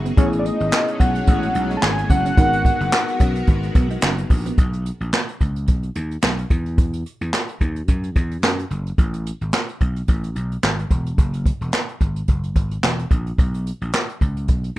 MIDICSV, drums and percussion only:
0, 0, Header, 1, 2, 480
1, 0, Start_track
1, 0, Tempo, 550459
1, 151, Time_signature, 4, 2, 24, 8
1, 12895, End_track
2, 0, Start_track
2, 0, Title_t, "Drums"
2, 46, Note_on_c, 9, 42, 58
2, 133, Note_off_c, 9, 42, 0
2, 151, Note_on_c, 9, 42, 97
2, 152, Note_on_c, 9, 36, 122
2, 238, Note_off_c, 9, 42, 0
2, 239, Note_off_c, 9, 36, 0
2, 285, Note_on_c, 9, 42, 58
2, 372, Note_off_c, 9, 42, 0
2, 395, Note_on_c, 9, 42, 82
2, 482, Note_off_c, 9, 42, 0
2, 526, Note_on_c, 9, 42, 48
2, 613, Note_off_c, 9, 42, 0
2, 630, Note_on_c, 9, 38, 117
2, 634, Note_on_c, 9, 39, 95
2, 717, Note_off_c, 9, 38, 0
2, 721, Note_off_c, 9, 39, 0
2, 766, Note_on_c, 9, 42, 56
2, 853, Note_off_c, 9, 42, 0
2, 872, Note_on_c, 9, 36, 97
2, 872, Note_on_c, 9, 42, 81
2, 959, Note_off_c, 9, 36, 0
2, 959, Note_off_c, 9, 42, 0
2, 1005, Note_on_c, 9, 42, 60
2, 1092, Note_off_c, 9, 42, 0
2, 1106, Note_on_c, 9, 42, 92
2, 1113, Note_on_c, 9, 36, 111
2, 1193, Note_off_c, 9, 42, 0
2, 1200, Note_off_c, 9, 36, 0
2, 1244, Note_on_c, 9, 42, 55
2, 1331, Note_off_c, 9, 42, 0
2, 1349, Note_on_c, 9, 42, 81
2, 1436, Note_off_c, 9, 42, 0
2, 1485, Note_on_c, 9, 42, 56
2, 1573, Note_off_c, 9, 42, 0
2, 1589, Note_on_c, 9, 38, 123
2, 1593, Note_on_c, 9, 39, 92
2, 1676, Note_off_c, 9, 38, 0
2, 1681, Note_off_c, 9, 39, 0
2, 1725, Note_on_c, 9, 42, 55
2, 1812, Note_off_c, 9, 42, 0
2, 1829, Note_on_c, 9, 36, 98
2, 1829, Note_on_c, 9, 42, 84
2, 1916, Note_off_c, 9, 36, 0
2, 1916, Note_off_c, 9, 42, 0
2, 1965, Note_on_c, 9, 42, 57
2, 2053, Note_off_c, 9, 42, 0
2, 2069, Note_on_c, 9, 42, 98
2, 2070, Note_on_c, 9, 36, 127
2, 2156, Note_off_c, 9, 42, 0
2, 2158, Note_off_c, 9, 36, 0
2, 2204, Note_on_c, 9, 42, 62
2, 2291, Note_off_c, 9, 42, 0
2, 2310, Note_on_c, 9, 36, 100
2, 2315, Note_on_c, 9, 42, 82
2, 2397, Note_off_c, 9, 36, 0
2, 2402, Note_off_c, 9, 42, 0
2, 2447, Note_on_c, 9, 42, 50
2, 2534, Note_off_c, 9, 42, 0
2, 2550, Note_on_c, 9, 38, 117
2, 2554, Note_on_c, 9, 39, 96
2, 2637, Note_off_c, 9, 38, 0
2, 2641, Note_off_c, 9, 39, 0
2, 2686, Note_on_c, 9, 42, 55
2, 2774, Note_off_c, 9, 42, 0
2, 2789, Note_on_c, 9, 42, 82
2, 2792, Note_on_c, 9, 36, 93
2, 2876, Note_off_c, 9, 42, 0
2, 2879, Note_off_c, 9, 36, 0
2, 2923, Note_on_c, 9, 42, 60
2, 3010, Note_off_c, 9, 42, 0
2, 3025, Note_on_c, 9, 42, 87
2, 3033, Note_on_c, 9, 36, 103
2, 3112, Note_off_c, 9, 42, 0
2, 3120, Note_off_c, 9, 36, 0
2, 3164, Note_on_c, 9, 42, 52
2, 3251, Note_off_c, 9, 42, 0
2, 3269, Note_on_c, 9, 42, 81
2, 3271, Note_on_c, 9, 36, 104
2, 3356, Note_off_c, 9, 42, 0
2, 3359, Note_off_c, 9, 36, 0
2, 3403, Note_on_c, 9, 42, 56
2, 3490, Note_off_c, 9, 42, 0
2, 3508, Note_on_c, 9, 38, 117
2, 3513, Note_on_c, 9, 39, 93
2, 3596, Note_off_c, 9, 38, 0
2, 3600, Note_off_c, 9, 39, 0
2, 3645, Note_on_c, 9, 42, 55
2, 3732, Note_off_c, 9, 42, 0
2, 3748, Note_on_c, 9, 46, 79
2, 3750, Note_on_c, 9, 36, 101
2, 3836, Note_off_c, 9, 46, 0
2, 3838, Note_off_c, 9, 36, 0
2, 3887, Note_on_c, 9, 42, 53
2, 3974, Note_off_c, 9, 42, 0
2, 3991, Note_on_c, 9, 42, 83
2, 3993, Note_on_c, 9, 36, 117
2, 4079, Note_off_c, 9, 42, 0
2, 4080, Note_off_c, 9, 36, 0
2, 4125, Note_on_c, 9, 42, 53
2, 4212, Note_off_c, 9, 42, 0
2, 4235, Note_on_c, 9, 42, 77
2, 4322, Note_off_c, 9, 42, 0
2, 4369, Note_on_c, 9, 42, 46
2, 4456, Note_off_c, 9, 42, 0
2, 4472, Note_on_c, 9, 38, 108
2, 4477, Note_on_c, 9, 39, 83
2, 4560, Note_off_c, 9, 38, 0
2, 4564, Note_off_c, 9, 39, 0
2, 4607, Note_on_c, 9, 42, 50
2, 4694, Note_off_c, 9, 42, 0
2, 4714, Note_on_c, 9, 42, 73
2, 4715, Note_on_c, 9, 36, 80
2, 4801, Note_off_c, 9, 42, 0
2, 4802, Note_off_c, 9, 36, 0
2, 4846, Note_on_c, 9, 42, 52
2, 4934, Note_off_c, 9, 42, 0
2, 4947, Note_on_c, 9, 42, 80
2, 4955, Note_on_c, 9, 36, 99
2, 5034, Note_off_c, 9, 42, 0
2, 5043, Note_off_c, 9, 36, 0
2, 5083, Note_on_c, 9, 42, 48
2, 5171, Note_off_c, 9, 42, 0
2, 5190, Note_on_c, 9, 42, 76
2, 5277, Note_off_c, 9, 42, 0
2, 5327, Note_on_c, 9, 42, 50
2, 5414, Note_off_c, 9, 42, 0
2, 5430, Note_on_c, 9, 38, 99
2, 5434, Note_on_c, 9, 39, 86
2, 5517, Note_off_c, 9, 38, 0
2, 5522, Note_off_c, 9, 39, 0
2, 5567, Note_on_c, 9, 42, 52
2, 5654, Note_off_c, 9, 42, 0
2, 5669, Note_on_c, 9, 42, 75
2, 5671, Note_on_c, 9, 36, 96
2, 5757, Note_off_c, 9, 42, 0
2, 5759, Note_off_c, 9, 36, 0
2, 5806, Note_on_c, 9, 42, 48
2, 5893, Note_off_c, 9, 42, 0
2, 5908, Note_on_c, 9, 42, 82
2, 5913, Note_on_c, 9, 36, 117
2, 5996, Note_off_c, 9, 42, 0
2, 6000, Note_off_c, 9, 36, 0
2, 6045, Note_on_c, 9, 42, 53
2, 6132, Note_off_c, 9, 42, 0
2, 6154, Note_on_c, 9, 42, 72
2, 6241, Note_off_c, 9, 42, 0
2, 6288, Note_on_c, 9, 42, 47
2, 6375, Note_off_c, 9, 42, 0
2, 6392, Note_on_c, 9, 38, 106
2, 6396, Note_on_c, 9, 39, 85
2, 6479, Note_off_c, 9, 38, 0
2, 6484, Note_off_c, 9, 39, 0
2, 6526, Note_on_c, 9, 42, 50
2, 6614, Note_off_c, 9, 42, 0
2, 6634, Note_on_c, 9, 36, 80
2, 6634, Note_on_c, 9, 42, 65
2, 6721, Note_off_c, 9, 36, 0
2, 6721, Note_off_c, 9, 42, 0
2, 6766, Note_on_c, 9, 42, 51
2, 6853, Note_off_c, 9, 42, 0
2, 6869, Note_on_c, 9, 42, 85
2, 6875, Note_on_c, 9, 36, 100
2, 6956, Note_off_c, 9, 42, 0
2, 6963, Note_off_c, 9, 36, 0
2, 7006, Note_on_c, 9, 42, 49
2, 7093, Note_off_c, 9, 42, 0
2, 7112, Note_on_c, 9, 42, 69
2, 7113, Note_on_c, 9, 36, 95
2, 7199, Note_off_c, 9, 42, 0
2, 7200, Note_off_c, 9, 36, 0
2, 7248, Note_on_c, 9, 42, 50
2, 7336, Note_off_c, 9, 42, 0
2, 7353, Note_on_c, 9, 38, 111
2, 7357, Note_on_c, 9, 39, 80
2, 7440, Note_off_c, 9, 38, 0
2, 7444, Note_off_c, 9, 39, 0
2, 7489, Note_on_c, 9, 42, 51
2, 7576, Note_off_c, 9, 42, 0
2, 7593, Note_on_c, 9, 42, 70
2, 7680, Note_off_c, 9, 42, 0
2, 7729, Note_on_c, 9, 42, 49
2, 7816, Note_off_c, 9, 42, 0
2, 7832, Note_on_c, 9, 42, 85
2, 7833, Note_on_c, 9, 36, 113
2, 7919, Note_off_c, 9, 42, 0
2, 7920, Note_off_c, 9, 36, 0
2, 7966, Note_on_c, 9, 42, 55
2, 8054, Note_off_c, 9, 42, 0
2, 8077, Note_on_c, 9, 42, 76
2, 8164, Note_off_c, 9, 42, 0
2, 8207, Note_on_c, 9, 42, 47
2, 8294, Note_off_c, 9, 42, 0
2, 8310, Note_on_c, 9, 38, 113
2, 8314, Note_on_c, 9, 39, 85
2, 8397, Note_off_c, 9, 38, 0
2, 8401, Note_off_c, 9, 39, 0
2, 8446, Note_on_c, 9, 42, 51
2, 8534, Note_off_c, 9, 42, 0
2, 8551, Note_on_c, 9, 42, 69
2, 8552, Note_on_c, 9, 36, 80
2, 8638, Note_off_c, 9, 42, 0
2, 8640, Note_off_c, 9, 36, 0
2, 8684, Note_on_c, 9, 42, 51
2, 8771, Note_off_c, 9, 42, 0
2, 8787, Note_on_c, 9, 42, 81
2, 8794, Note_on_c, 9, 36, 98
2, 8875, Note_off_c, 9, 42, 0
2, 8881, Note_off_c, 9, 36, 0
2, 8924, Note_on_c, 9, 42, 52
2, 9011, Note_off_c, 9, 42, 0
2, 9031, Note_on_c, 9, 42, 71
2, 9119, Note_off_c, 9, 42, 0
2, 9168, Note_on_c, 9, 42, 50
2, 9256, Note_off_c, 9, 42, 0
2, 9272, Note_on_c, 9, 38, 111
2, 9276, Note_on_c, 9, 39, 83
2, 9359, Note_off_c, 9, 38, 0
2, 9363, Note_off_c, 9, 39, 0
2, 9409, Note_on_c, 9, 42, 50
2, 9496, Note_off_c, 9, 42, 0
2, 9508, Note_on_c, 9, 42, 73
2, 9510, Note_on_c, 9, 36, 93
2, 9596, Note_off_c, 9, 42, 0
2, 9597, Note_off_c, 9, 36, 0
2, 9646, Note_on_c, 9, 42, 51
2, 9733, Note_off_c, 9, 42, 0
2, 9750, Note_on_c, 9, 42, 90
2, 9751, Note_on_c, 9, 36, 115
2, 9837, Note_off_c, 9, 42, 0
2, 9838, Note_off_c, 9, 36, 0
2, 9883, Note_on_c, 9, 42, 57
2, 9970, Note_off_c, 9, 42, 0
2, 9989, Note_on_c, 9, 36, 92
2, 9993, Note_on_c, 9, 42, 78
2, 10077, Note_off_c, 9, 36, 0
2, 10080, Note_off_c, 9, 42, 0
2, 10126, Note_on_c, 9, 42, 46
2, 10213, Note_off_c, 9, 42, 0
2, 10229, Note_on_c, 9, 38, 110
2, 10234, Note_on_c, 9, 39, 88
2, 10317, Note_off_c, 9, 38, 0
2, 10321, Note_off_c, 9, 39, 0
2, 10365, Note_on_c, 9, 42, 49
2, 10452, Note_off_c, 9, 42, 0
2, 10470, Note_on_c, 9, 42, 69
2, 10471, Note_on_c, 9, 36, 83
2, 10557, Note_off_c, 9, 42, 0
2, 10558, Note_off_c, 9, 36, 0
2, 10602, Note_on_c, 9, 42, 53
2, 10690, Note_off_c, 9, 42, 0
2, 10705, Note_on_c, 9, 42, 81
2, 10712, Note_on_c, 9, 36, 98
2, 10792, Note_off_c, 9, 42, 0
2, 10800, Note_off_c, 9, 36, 0
2, 10842, Note_on_c, 9, 42, 52
2, 10929, Note_off_c, 9, 42, 0
2, 10948, Note_on_c, 9, 42, 72
2, 10950, Note_on_c, 9, 36, 93
2, 11035, Note_off_c, 9, 42, 0
2, 11037, Note_off_c, 9, 36, 0
2, 11084, Note_on_c, 9, 42, 49
2, 11171, Note_off_c, 9, 42, 0
2, 11190, Note_on_c, 9, 38, 105
2, 11194, Note_on_c, 9, 39, 82
2, 11277, Note_off_c, 9, 38, 0
2, 11281, Note_off_c, 9, 39, 0
2, 11326, Note_on_c, 9, 42, 53
2, 11414, Note_off_c, 9, 42, 0
2, 11430, Note_on_c, 9, 36, 94
2, 11430, Note_on_c, 9, 42, 75
2, 11517, Note_off_c, 9, 36, 0
2, 11517, Note_off_c, 9, 42, 0
2, 11566, Note_on_c, 9, 42, 50
2, 11653, Note_off_c, 9, 42, 0
2, 11671, Note_on_c, 9, 36, 114
2, 11673, Note_on_c, 9, 42, 86
2, 11758, Note_off_c, 9, 36, 0
2, 11760, Note_off_c, 9, 42, 0
2, 11806, Note_on_c, 9, 42, 55
2, 11893, Note_off_c, 9, 42, 0
2, 11916, Note_on_c, 9, 42, 73
2, 12003, Note_off_c, 9, 42, 0
2, 12047, Note_on_c, 9, 42, 46
2, 12134, Note_off_c, 9, 42, 0
2, 12153, Note_on_c, 9, 38, 107
2, 12158, Note_on_c, 9, 39, 87
2, 12241, Note_off_c, 9, 38, 0
2, 12245, Note_off_c, 9, 39, 0
2, 12290, Note_on_c, 9, 42, 46
2, 12377, Note_off_c, 9, 42, 0
2, 12393, Note_on_c, 9, 36, 85
2, 12394, Note_on_c, 9, 42, 67
2, 12480, Note_off_c, 9, 36, 0
2, 12481, Note_off_c, 9, 42, 0
2, 12526, Note_on_c, 9, 42, 51
2, 12613, Note_off_c, 9, 42, 0
2, 12625, Note_on_c, 9, 42, 86
2, 12633, Note_on_c, 9, 36, 99
2, 12712, Note_off_c, 9, 42, 0
2, 12720, Note_off_c, 9, 36, 0
2, 12763, Note_on_c, 9, 42, 49
2, 12850, Note_off_c, 9, 42, 0
2, 12895, End_track
0, 0, End_of_file